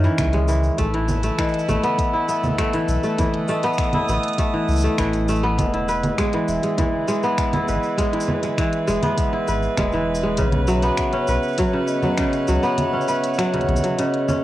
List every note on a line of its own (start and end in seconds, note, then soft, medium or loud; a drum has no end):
0.00 0.74 C#3 medium
0.00 0.83 D#3 medium
0.00 0.47 E3 loud
0.00 0.74 C#4 medium
0.00 0.80 D#5 medium
0.00 0.18 E5 medium
0.00 shaker soft
0.18 0.70 C#2 medium
0.18 0.47 E5 medium
0.18 finger snap loud
0.18 kick loud
0.18 closed hi-hat medium
0.18 low conga medium
0.18 shaker soft
0.33 0.83 G#3 medium
0.33 closed hi-hat soft
0.33 shaker soft
0.48 0.83 E3 medium
0.48 0.77 E5 medium
0.48 shaker medium
0.63 shaker soft
0.78 1.30 A1 medium
0.78 1.23 A3 medium
0.78 5.54 A3 medium
0.78 3.16 E4 medium
0.78 5.55 A4 medium
0.78 5.54 B4 medium
0.78 kick loud
0.78 closed hi-hat medium
0.78 shaker soft
0.94 1.37 E3 medium
0.94 closed hi-hat soft
1.08 low conga medium
1.08 shaker medium
1.23 1.68 A3 medium
1.23 closed hi-hat soft
1.23 shaker soft
1.38 2.73 E3 medium
1.38 1.67 D#5 medium
1.38 finger snap loud
1.38 kick loud
1.38 closed hi-hat medium
1.38 shaker soft
1.48 shaker soft
1.54 closed hi-hat soft
1.59 shaker soft
1.69 1.78 A1 medium
1.69 2.58 A3 loud
1.69 low conga medium
1.69 shaker medium
1.83 2.28 B3 loud
1.83 closed hi-hat soft
1.83 shaker soft
1.98 kick loud
1.98 closed hi-hat medium
1.98 shaker soft
2.13 3.70 E4 medium
2.28 3.63 B3 medium
2.28 2.57 E5 medium
2.28 shaker medium
2.44 low conga medium
2.44 shaker soft
2.47 low conga medium
2.51 low conga soft
2.55 3.03 A3 loud
2.55 2.87 E5 medium
2.55 finger snap loud
2.55 kick loud
2.55 closed hi-hat medium
2.55 low conga soft
2.59 low conga soft
2.59 shaker soft
2.62 low conga soft
2.65 low conga soft
2.69 closed hi-hat soft
2.69 low conga soft
2.69 shaker soft
2.74 3.17 E3 medium
2.88 2.98 B1 loud
2.88 shaker medium
3.03 3.48 A3 medium
3.03 shaker soft
3.18 4.52 E3 medium
3.18 5.56 D#6 medium
3.18 kick loud
3.18 closed hi-hat medium
3.18 low conga medium
3.18 shaker soft
3.34 closed hi-hat soft
3.48 4.38 A3 loud
3.48 3.77 D#5 medium
3.48 shaker medium
3.63 4.09 B3 loud
3.63 closed hi-hat soft
3.63 shaker soft
3.73 shaker soft
3.78 finger snap medium
3.78 kick loud
3.78 closed hi-hat medium
3.78 shaker soft
3.93 5.51 E4 medium
3.93 closed hi-hat soft
3.93 low conga medium
4.08 4.18 A1 medium
4.08 5.43 B3 medium
4.08 shaker medium
4.23 closed hi-hat soft
4.28 closed hi-hat soft
4.33 closed hi-hat soft
4.38 4.83 A3 loud
4.38 4.67 E5 medium
4.38 kick loud
4.38 closed hi-hat medium
4.38 shaker soft
4.54 4.97 E3 medium
4.68 4.88 C#2 loud
4.68 4.97 E4 medium
4.68 shaker soft
4.71 shaker soft
4.73 shaker soft
4.76 shaker medium
4.78 shaker medium
4.81 shaker medium
4.83 5.28 A3 medium
4.83 shaker soft
4.98 5.60 A1 loud
4.98 5.63 E3 medium
4.98 finger snap loud
4.98 kick loud
4.98 closed hi-hat medium
4.98 shaker soft
5.13 closed hi-hat soft
5.13 shaker soft
5.28 6.24 A3 medium
5.28 shaker medium
5.36 shaker soft
5.43 7.23 B3 loud
5.57 6.10 E1 medium
5.57 10.34 E3 medium
5.57 10.34 E4 medium
5.57 10.34 G#4 medium
5.57 14.44 B4 medium
5.57 5.87 D#5 medium
5.57 kick loud
5.57 closed hi-hat medium
5.57 low conga medium
5.57 shaker soft
5.74 7.30 E4 medium
5.74 closed hi-hat soft
5.88 7.12 B4 medium
5.88 shaker medium
6.03 closed hi-hat soft
6.03 low conga medium
6.03 shaker soft
6.18 6.62 G#3 loud
6.18 finger snap medium
6.18 kick loud
6.18 closed hi-hat medium
6.18 shaker soft
6.33 6.77 E3 medium
6.33 closed hi-hat soft
6.48 6.58 E1 medium
6.48 6.76 E5 medium
6.48 shaker medium
6.63 7.07 G#3 medium
6.63 closed hi-hat soft
6.63 shaker soft
6.78 8.12 E3 medium
6.78 7.06 E5 medium
6.78 kick loud
6.78 closed hi-hat medium
6.78 low conga medium
6.78 shaker soft
7.08 7.97 G#3 loud
7.08 shaker medium
7.23 9.03 B3 loud
7.23 shaker soft
7.38 finger snap medium
7.38 kick loud
7.38 closed hi-hat medium
7.38 shaker soft
7.53 9.10 E4 medium
7.53 closed hi-hat soft
7.53 low conga medium
7.53 shaker soft
7.68 7.78 G#1 medium
7.68 8.91 B4 medium
7.68 7.97 D#5 medium
7.68 shaker medium
7.83 shaker soft
7.98 8.42 G#3 medium
7.98 kick loud
7.98 closed hi-hat medium
7.98 shaker soft
8.13 8.57 E3 medium
8.13 closed hi-hat soft
8.20 shaker medium
8.28 low conga medium
8.43 8.86 G#3 medium
8.43 closed hi-hat soft
8.43 shaker soft
8.58 9.92 E3 medium
8.58 8.87 E5 medium
8.58 finger snap medium
8.58 kick loud
8.58 closed hi-hat medium
8.58 shaker soft
8.73 closed hi-hat soft
8.88 8.98 E1 loud
8.88 9.77 G#3 loud
8.88 9.17 E5 medium
8.88 shaker medium
9.03 10.83 B3 loud
9.03 closed hi-hat soft
9.03 low conga medium
9.03 shaker soft
9.18 kick loud
9.18 closed hi-hat medium
9.18 shaker soft
9.33 10.89 E4 medium
9.48 9.68 G#1 loud
9.48 10.71 B4 medium
9.48 shaker medium
9.63 shaker soft
9.77 10.40 E1 medium
9.77 10.22 G#3 loud
9.77 10.06 D#5 medium
9.77 finger snap medium
9.77 kick loud
9.77 closed hi-hat medium
9.77 low conga medium
9.77 shaker soft
9.92 10.43 E3 medium
9.92 shaker soft
10.15 shaker medium
10.23 10.43 G#3 medium
10.37 10.90 B1 medium
10.37 11.72 C#3 medium
10.37 14.44 B3 medium
10.37 14.44 C#5 medium
10.37 14.44 F#5 medium
10.37 kick loud
10.37 closed hi-hat medium
10.37 shaker soft
10.52 closed hi-hat soft
10.52 low conga medium
10.67 11.57 F#3 loud
10.67 10.97 E5 medium
10.67 shaker medium
10.82 12.63 B3 loud
10.82 closed hi-hat soft
10.82 shaker soft
10.97 11.27 E5 medium
10.97 finger snap loud
10.97 kick loud
10.97 closed hi-hat medium
10.97 shaker soft
11.13 12.87 C#4 medium
11.13 closed hi-hat soft
11.27 11.38 B1 loud
11.27 12.51 B4 medium
11.27 shaker medium
11.43 shaker soft
11.48 shaker soft
11.53 shaker soft
11.58 11.78 F#3 loud
11.58 kick loud
11.58 closed hi-hat medium
11.58 shaker soft
11.68 shaker soft
11.73 12.17 C#3 medium
11.87 12.16 D#5 medium
11.87 shaker medium
12.03 12.23 F#3 medium
12.03 low conga medium
12.03 shaker soft
12.18 13.52 C#3 medium
12.18 finger snap loud
12.18 kick loud
12.18 closed hi-hat medium
12.18 shaker soft
12.33 closed hi-hat soft
12.33 shaker soft
12.48 12.58 C#2 loud
12.48 13.37 F#3 medium
12.48 shaker medium
12.63 14.43 B3 loud
12.63 shaker soft
12.78 13.07 E5 medium
12.78 closed hi-hat medium
12.78 low conga medium
12.78 shaker soft
12.93 14.28 C#4 medium
13.01 shaker soft
13.08 14.31 B4 medium
13.08 13.37 E5 medium
13.08 shaker medium
13.24 closed hi-hat medium
13.24 shaker soft
13.34 shaker soft
13.38 13.58 F#3 medium
13.38 finger snap loud
13.38 closed hi-hat medium
13.38 shaker soft
13.54 13.97 C#3 medium
13.54 closed hi-hat soft
13.54 low conga soft
13.59 closed hi-hat soft
13.59 low conga soft
13.64 low conga soft
13.68 13.78 B1 loud
13.68 closed hi-hat soft
13.68 low conga medium
13.74 closed hi-hat soft
13.74 low conga medium
13.74 shaker medium
13.79 low conga medium
13.84 14.03 F#3 medium
13.84 closed hi-hat soft
13.84 shaker soft
13.98 14.44 C#3 medium
13.98 14.27 D#5 medium
13.98 closed hi-hat medium
13.98 shaker soft
14.14 closed hi-hat soft
14.29 14.44 C#4 medium
14.29 low conga medium
14.29 shaker medium